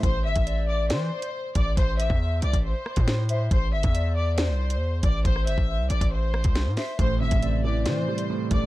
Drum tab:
HH |x--xx---x--x--x-|x-x---xx---x--x-|x--xx---x--x--x-|x-x---xx---x--o-|
SD |--------o-------|----------r-o---|--------o-------|-r--------r-o-o-|
BD |o--o----------o-|o--o---o---o----|o--o----------o-|o--o---o---o----|

HH |x--xx---x--x--x-|
SD |--------o-------|
BD |o--o----------o-|